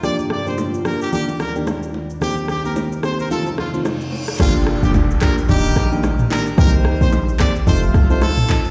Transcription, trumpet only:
X:1
M:4/4
L:1/16
Q:"Swing 16ths" 1/4=110
K:Gm
V:1 name="Trumpet"
d z d c z2 B G G z B z4 z | G z G B z2 c B A z F z4 z | F z2 G z2 B z G3 z3 B z | B z2 c z2 d z c z2 c A3 z |]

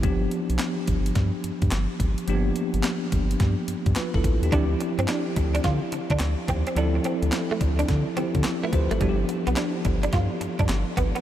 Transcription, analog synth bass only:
X:1
M:4/4
L:1/16
Q:"Swing 16ths" 1/4=107
K:Gmix
V:1 name="Analog synth bass" clef=bass
G,,,2 z B,,, z2 G,,,2 G,, z G,, G,, G,,, z ^G,,, z | G,,,2 z G,,, z2 G,,,2 G,, z G,, G,, z G,,, A,,, _E,, | D,,2 z G,, z2 D,,2 D, z D, D, D,, z _E,, z | D,,2 z D,, z2 D,,2 D, z D, D, z2 D,, ^G,,, |
G,,,2 z B,,, z2 G,,,2 G,, z G,, G,, G,,, z ^G,,, z |]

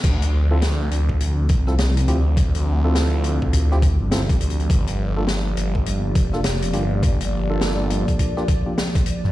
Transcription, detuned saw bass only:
X:1
M:4/4
L:1/16
Q:"Swing 16ths" 1/4=103
K:Dm
V:1 name="Detuned saw bass" clef=bass
D,,2 D,,4 D,,4 C,,4 D,,2- | D,, D,,6 D,,4 G,,,3 D,,2 | G,,,2 G,,,4 G,,,4 F,,,4 G,,,2- | G,,, G,,,6 z8 G,, |]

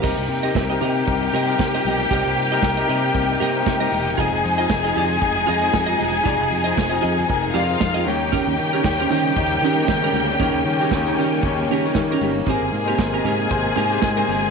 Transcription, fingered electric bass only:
X:1
M:4/4
L:1/16
Q:"Swing 16ths" 1/4=116
K:Cphr
V:1 name="Fingered electric bass" clef=bass
C,, C,, C,2 C,,2 C,2 C,,2 C,2 C,2 =B,,,2 | C,, C,, C,2 C,,2 C,2 C,,2 C,2 C,2 =E,,,2 | F,,, F,,, F,,2 F,,,2 F,,2 F,,,2 F,,2 F,,2 =E,,,2 | F,,, F,,, F,,2 F,,,2 F,,2 F,,,2 F,,2 F,,2 E,,2- |
E,, E,, E,2 E,,2 E,2 E,,2 E,2 E,2 =D,,2 | E,, E,, E,2 E,,2 E,2 E,,2 E,2 E,2 G,,,2 | A,,, A,,, A,,2 A,,,2 A,,2 A,,,2 A,,2 A,,2 G,,,2 |]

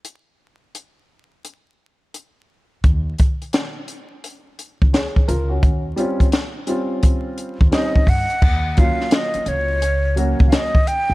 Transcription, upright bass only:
X:1
M:4/4
L:1/16
Q:"Swing 16ths" 1/4=86
K:Ebdor
V:1 name="Upright bass" clef=bass
z16 | E,,2 z8 z D,, z2 D,,2 | E,,2 z8 z E,, z2 =G,, z | E,,3 z3 D,,4- D,, D,, z3 D,, |]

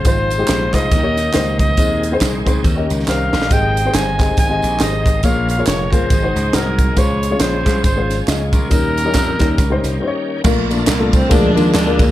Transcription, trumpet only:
X:1
M:4/4
L:1/8
Q:"Swing" 1/4=139
K:Ab
V:1 name="Trumpet"
c3 e4 e- | e2 z4 f2 | g2 a2 a2 e2 | f f d c3 B2 |
d2 c2 c2 z B- | B6 z2 | [K:Bb] z8 |]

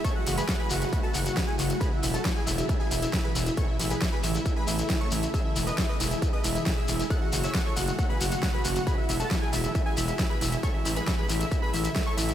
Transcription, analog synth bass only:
X:1
M:4/4
L:1/8
Q:1/4=136
K:E
V:1 name="Analog synth bass" clef=bass
z F,,, z F,,, z F,,, z F,,, | z E,,, z E,,, z E,,, z E,,, | z A,,, z A,,, z A,,, z A,,, | z E,,, z E,,, z E,,, z E,,, |
z F,,, z F,,, z F,,, z F,,, | z E,,, z E,,, z E,,, z E,,, | z A,,, z A,,, z A,,, z A,,, |]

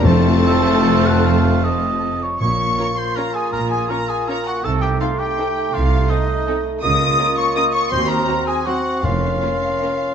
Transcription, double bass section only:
X:1
M:3/4
L:1/8
Q:1/4=160
K:Bbm
V:1 name="Double bass section" clef=bass
F,,,6- | F,,,4- F,,, z | B,,,2 z4 | B,,,2 z4 |
C,,2 z4 | C,,2 z4 | D,,2 z4 | E,,2 z4 |
F,,,2 z4 |]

